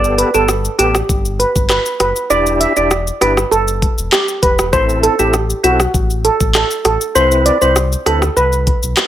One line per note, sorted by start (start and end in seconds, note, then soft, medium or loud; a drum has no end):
0.00 0.23 G1 loud
0.00 0.31 B3 medium
0.00 0.31 G4 medium
0.00 0.31 A4 loud
0.04 shaker medium
0.18 0.29 B4 medium
0.18 closed hi-hat medium
0.18 shaker medium
0.34 0.68 G1 loud
0.34 0.51 B3 medium
0.34 0.51 G4 medium
0.34 0.44 A4 medium
0.34 0.51 A4 medium
0.34 shaker medium
0.48 cross-stick medium
0.48 shaker medium
0.65 shaker medium
0.79 1.02 A1 medium
0.79 0.97 B3 medium
0.79 0.89 G4 medium
0.79 0.97 G4 medium
0.79 0.97 A4 medium
0.79 closed hi-hat medium
0.79 shaker medium
0.95 cross-stick loud
0.95 shaker medium
1.09 1.45 G1 loud
1.09 kick loud
1.09 shaker medium
1.25 shaker medium
1.40 1.50 B4 medium
1.40 closed hi-hat medium
1.40 shaker soft
1.56 1.79 G1 loud
1.56 kick loud
1.56 shaker medium
1.70 1.80 B4 medium
1.70 cross-stick loud
1.70 clap loud
1.70 shaker medium
1.86 shaker medium
2.00 2.12 F#1 loud
2.00 2.11 B4 medium
2.00 cross-stick loud
2.00 closed hi-hat medium
2.00 shaker medium
2.16 shaker medium
2.30 2.66 E1 loud
2.30 2.73 D4 loud
2.30 2.73 E4 medium
2.30 2.73 G4 loud
2.30 2.41 D5 loud
2.30 shaker medium
2.46 shaker medium
2.61 2.71 E5 medium
2.61 closed hi-hat medium
2.61 shaker medium
2.77 3.11 E1 loud
2.77 2.93 D4 medium
2.77 2.94 E4 medium
2.77 2.94 G4 medium
2.77 2.86 D5 medium
2.77 shaker medium
2.91 cross-stick loud
2.91 shaker medium
3.07 shaker medium
3.21 3.45 G1 loud
3.21 3.40 D4 medium
3.21 3.40 E4 medium
3.21 3.40 G4 medium
3.21 3.32 B4 medium
3.21 cross-stick medium
3.21 closed hi-hat medium
3.21 shaker medium
3.37 cross-stick loud
3.37 shaker medium
3.51 3.87 F#1 loud
3.51 3.95 A4 loud
3.51 shaker medium
3.68 shaker medium
3.82 kick loud
3.82 closed hi-hat medium
3.82 shaker soft
3.98 4.09 E1 loud
3.98 shaker medium
4.12 4.23 G4 medium
4.12 cross-stick loud
4.12 clap loud
4.12 shaker medium
4.28 shaker medium
4.43 4.75 E1 medium
4.43 4.53 B4 medium
4.43 kick loud
4.43 closed hi-hat medium
4.43 shaker medium
4.59 cross-stick loud
4.59 shaker medium
4.73 5.08 A1 loud
4.73 5.15 C4 loud
4.73 5.15 E4 medium
4.73 5.16 A4 loud
4.73 4.83 C5 loud
4.73 kick loud
4.73 shaker medium
4.89 shaker medium
5.03 5.14 A4 medium
5.03 closed hi-hat medium
5.03 shaker medium
5.19 5.53 A1 loud
5.19 5.36 C4 medium
5.19 5.36 E4 medium
5.19 5.29 G4 medium
5.19 5.36 A4 medium
5.19 shaker medium
5.33 cross-stick medium
5.33 shaker medium
5.50 shaker medium
5.63 5.87 B1 loud
5.63 5.82 C4 medium
5.63 5.82 E4 medium
5.63 5.74 F#4 medium
5.63 5.82 A4 medium
5.63 closed hi-hat medium
5.63 shaker medium
5.80 cross-stick loud
5.80 shaker medium
5.94 6.29 A1 loud
5.94 kick loud
5.94 shaker medium
6.10 shaker medium
6.25 6.35 A4 medium
6.25 closed hi-hat medium
6.25 shaker soft
6.40 6.64 A1 medium
6.40 kick loud
6.40 shaker medium
6.55 6.65 A4 medium
6.55 cross-stick loud
6.55 clap loud
6.55 shaker medium
6.71 shaker medium
6.85 6.97 A1 medium
6.85 6.96 A4 medium
6.85 cross-stick loud
6.85 closed hi-hat medium
6.85 shaker medium
7.01 shaker medium
7.15 7.51 C2 loud
7.15 7.58 C4 medium
7.15 7.58 E4 medium
7.15 7.58 B4 loud
7.15 7.26 C5 loud
7.15 shaker medium
7.32 shaker medium
7.46 7.56 D5 medium
7.46 closed hi-hat medium
7.46 shaker medium
7.61 7.96 C2 loud
7.61 7.78 C4 medium
7.61 7.79 E4 medium
7.61 7.79 B4 medium
7.61 7.71 C5 medium
7.61 shaker medium
7.76 cross-stick medium
7.76 shaker medium
7.92 shaker medium
8.06 8.29 D2 loud
8.06 8.24 C4 medium
8.06 8.25 E4 medium
8.06 8.17 A4 medium
8.06 8.25 B4 medium
8.06 cross-stick medium
8.06 closed hi-hat medium
8.06 shaker medium
8.22 cross-stick loud
8.22 shaker medium
8.36 8.72 C2 loud
8.36 8.80 B4 loud
8.36 shaker medium
8.53 shaker medium
8.67 kick loud
8.67 closed hi-hat medium
8.67 shaker soft
8.83 8.94 B1 medium
8.83 shaker medium
8.97 cross-stick loud
8.97 clap loud
8.97 shaker medium